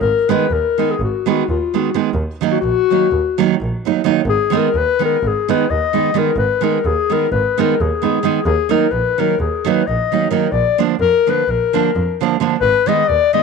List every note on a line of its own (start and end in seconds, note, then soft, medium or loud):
0.01 0.10 G#1 medium
0.01 0.31 A#4 medium
0.29 0.45 D#3 medium
0.29 0.44 G#3 medium
0.29 0.45 B3 medium
0.29 0.45 D#4 medium
0.29 0.54 B4 medium
0.50 0.58 D#2 medium
0.50 0.92 A#4 medium
0.78 0.93 D#3 medium
0.78 0.93 G#3 soft
0.78 0.94 B3 soft
0.78 0.94 D#4 medium
0.91 1.01 G#4 medium
1.00 1.08 G#1 medium
1.00 1.27 F#4 medium
1.26 1.42 D#3 medium
1.26 1.42 G#3 medium
1.26 1.43 B3 medium
1.26 1.43 D#4 medium
1.26 1.49 F#4 medium
1.49 1.57 D#2 medium
1.49 1.79 F4 medium
1.74 1.88 D#3 soft
1.74 1.89 G#3 soft
1.74 1.89 B3 soft
1.74 1.89 D#4 soft
1.74 1.97 F#4 medium
1.94 2.09 D#3 medium
1.94 2.09 G#3 medium
1.94 2.10 B3 medium
1.94 2.10 D#4 medium
2.14 2.22 D#2 medium
2.41 2.57 D#3 medium
2.41 2.57 F#3 medium
2.41 2.58 A#3 medium
2.41 2.58 D#4 medium
2.51 2.60 F#4 medium
2.60 2.71 A#1 medium
2.60 3.55 F#4 loud
2.90 3.06 D#3 soft
2.90 3.06 F#3 soft
2.90 3.07 A#3 soft
2.90 3.07 D#4 medium
3.11 3.19 D#2 medium
3.38 3.54 D#3 medium
3.38 3.54 F#3 medium
3.38 3.55 A#3 medium
3.38 3.55 D#4 medium
3.61 3.69 A#1 medium
3.85 4.00 D#3 soft
3.85 4.00 F#3 soft
3.85 4.00 A#3 medium
3.85 4.01 D#4 medium
4.04 4.20 D#3 medium
4.04 4.20 F#3 medium
4.04 4.20 A#3 medium
4.04 4.21 D#4 medium
4.26 4.34 G#1 loud
4.26 4.59 G#4 loud
4.50 4.67 D#3 medium
4.50 4.68 G#3 medium
4.50 4.68 B3 medium
4.50 4.69 D#4 medium
4.57 4.79 A#4 medium
4.75 4.83 D#2 medium
4.75 5.03 B4 loud
4.99 5.16 D#3 medium
4.99 5.16 G#3 soft
4.99 5.16 B3 soft
4.99 5.17 D#4 medium
5.05 5.28 A#4 medium
5.23 5.31 G#1 medium
5.23 5.52 G#4 medium
5.48 5.64 D#3 medium
5.48 5.64 G#3 medium
5.48 5.65 B3 medium
5.48 5.65 D#4 medium
5.48 5.72 B4 medium
5.70 5.78 D#2 medium
5.70 6.20 D#5 medium
5.93 6.09 D#3 soft
5.93 6.09 G#3 soft
5.93 6.09 B3 soft
5.93 6.10 D#4 medium
6.14 6.29 D#3 medium
6.14 6.30 G#3 medium
6.14 6.30 B3 medium
6.14 6.31 D#4 medium
6.18 6.38 A#4 medium
6.36 6.44 G#1 medium
6.36 6.65 B4 medium
6.61 6.77 D#3 medium
6.61 6.77 G#3 medium
6.61 6.78 B3 medium
6.61 6.78 D#4 medium
6.61 6.87 A#4 medium
6.85 6.93 D#2 medium
6.85 7.14 G#4 loud
7.10 7.25 D#3 soft
7.10 7.25 G#3 medium
7.10 7.26 B3 soft
7.10 7.26 D#4 medium
7.10 7.31 A#4 medium
7.32 7.40 G#1 medium
7.32 7.62 B4 medium
7.58 7.73 D#3 medium
7.58 7.73 G#3 medium
7.58 7.74 B3 medium
7.58 7.74 D#4 medium
7.58 7.82 A#4 medium
7.81 7.89 D#2 medium
7.81 8.45 G#4 medium
8.02 8.17 D#3 soft
8.02 8.18 G#3 medium
8.02 8.18 B3 medium
8.02 8.18 D#4 medium
8.23 8.38 D#3 medium
8.23 8.39 G#3 medium
8.23 8.39 B3 medium
8.23 8.39 D#4 medium
8.46 8.54 D#2 loud
8.46 8.72 G#4 loud
8.69 8.85 D#3 medium
8.69 8.86 F#3 medium
8.69 8.86 A#3 medium
8.69 8.86 D#4 medium
8.69 8.93 A#4 medium
8.91 9.00 A#1 medium
8.91 9.21 B4 loud
9.18 9.34 D#3 medium
9.18 9.34 F#3 soft
9.18 9.34 A#3 soft
9.18 9.34 D#4 medium
9.18 9.40 A#4 medium
9.39 9.47 D#2 medium
9.39 9.70 G#4 medium
9.65 9.81 D#3 medium
9.65 9.81 F#3 medium
9.65 9.82 A#3 medium
9.65 9.82 D#4 medium
9.65 9.88 B4 medium
9.87 9.96 A#1 medium
9.87 10.30 D#5 medium
10.12 10.27 D#3 soft
10.12 10.27 F#3 soft
10.12 10.27 A#3 soft
10.12 10.27 D#4 medium
10.30 10.46 D#3 medium
10.30 10.46 F#3 medium
10.30 10.46 A#3 medium
10.30 10.47 D#4 medium
10.30 10.53 A#4 medium
10.52 10.61 A#1 loud
10.52 10.79 D5 loud
10.78 10.94 D3 medium
10.78 10.94 F3 medium
10.78 10.94 A#3 medium
10.78 10.95 D4 medium
10.99 11.07 F2 medium
10.99 11.32 A#4 loud
11.27 11.42 D3 medium
11.27 11.42 F3 soft
11.27 11.43 A#3 soft
11.27 11.43 D4 medium
11.27 11.52 B4 loud
11.48 11.56 A#1 medium
11.48 12.22 A#4 medium
11.73 11.90 D3 medium
11.73 11.89 F3 medium
11.73 11.90 A#3 medium
11.73 11.90 D4 medium
11.96 12.04 F2 medium
12.21 12.35 D3 medium
12.21 12.35 F3 medium
12.21 12.36 A#3 medium
12.21 12.36 D4 medium
12.40 12.55 D3 medium
12.40 12.55 F3 medium
12.40 12.56 A#3 medium
12.40 12.56 D4 medium
12.61 12.69 G#1 medium
12.61 12.89 B4 loud
12.86 13.02 D#3 medium
12.86 13.03 G#3 medium
12.86 13.03 B3 medium
12.86 13.03 D#4 medium
12.86 13.10 D#5 loud
13.08 13.17 D#2 medium
13.08 13.33 D5 loud
13.33 13.43 D#3 medium
13.33 13.43 G#3 soft
13.33 13.43 B3 soft
13.33 13.43 D#4 medium
13.33 13.43 D#5 loud